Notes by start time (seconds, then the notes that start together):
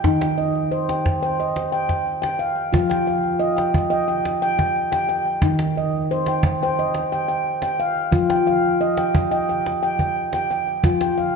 Already playing: G5
0.04 D#3 D#4, cajon bass, cajon slap
0.21 G5, cajon slap
0.38 D#5
0.55 cajon slap
0.71 C5
0.89 G5, cajon slap
1.06 cajon bass, cajon slap
1.23 C5 G5
1.40 D#5, cajon slap
1.56 cajon slap
1.72 G5
1.89 G5, cajon bass, cajon slap
2.22 G5, cajon slap
2.39 F5, cajon slap
2.72 F3 F4, cajon bass
2.90 G5, cajon slap
3.07 F5
3.40 D#5
3.57 G5, cajon slap
3.74 cajon bass
3.90 D#5 G5, cajon slap
4.08 G5
4.25 cajon slap
4.42 G5
4.59 G5, cajon bass
4.92 G5, cajon slap
5.09 G5, cajon slap
5.25 cajon slap
5.42 D#3 D#4, cajon bass
5.59 cajon slap
5.77 D#5
6.11 C5
6.26 G5, cajon slap
6.43 cajon bass
6.61 C5 G5, cajon slap
6.79 D#5
6.94 cajon slap
7.12 G5
7.28 G5
7.62 G5, cajon slap
7.79 F5, cajon slap
7.96 cajon slap
8.11 F3 F4, cajon bass
8.30 G5, cajon slap
8.47 F5
8.81 D#5
8.97 G5, cajon slap
9.15 cajon bass
9.31 D#5 G5, cajon slap
9.49 G5
9.66 cajon slap
9.83 G5
9.99 G5, cajon bass
10.33 G5, cajon slap
10.50 G5, cajon slap
10.67 cajon slap
10.83 F3 F4, cajon bass
11.01 G5, cajon slap
11.17 F5, cajon slap